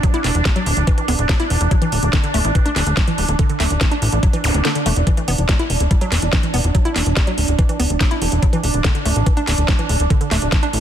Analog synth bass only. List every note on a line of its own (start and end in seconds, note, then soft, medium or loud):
0.24 0.31 E1 medium
0.35 0.42 E1 medium
0.66 0.73 D1 medium
0.77 0.84 D1 medium
1.08 1.15 D1 loud
1.19 1.26 D1 medium
1.50 1.57 E1 medium
1.61 1.68 E1 medium
1.92 1.99 D1 medium
2.03 2.10 D1 medium
2.34 2.41 D1 medium
2.45 2.52 A1 medium
2.76 2.83 D1 loud
2.87 2.94 D1 medium
3.18 3.25 D1 medium
3.29 3.36 D1 medium
3.60 3.67 D1 medium
3.70 3.78 D1 medium
4.02 4.09 A1 medium
4.12 4.19 A1 medium
4.44 4.51 D1 medium
4.54 4.61 D1 medium
4.86 4.93 E1 medium
4.96 5.03 E1 medium
5.28 5.35 E1 medium
5.38 5.45 E1 medium
5.70 5.77 E1 medium
5.80 5.87 D1 medium
6.12 6.19 E1 medium
6.22 6.29 E1 medium
6.54 6.61 E1 medium
6.64 6.71 E1 medium
6.96 7.03 E1 medium
7.06 7.13 E1 medium
7.38 7.45 D1 medium
7.48 7.55 D1 medium
7.80 7.87 D1 medium
7.90 7.97 D1 medium
8.22 8.29 E1 medium
8.32 8.39 E1 medium
8.63 8.71 D1 medium
8.74 8.81 D1 medium
9.05 9.12 D1 medium
9.16 9.23 A1 medium
9.47 9.54 D1 medium
9.58 9.65 D1 medium
9.89 9.96 D1 medium
10.00 10.07 D1 medium
10.31 10.38 D1 medium
10.42 10.49 D1 medium
10.73 10.80 A1 medium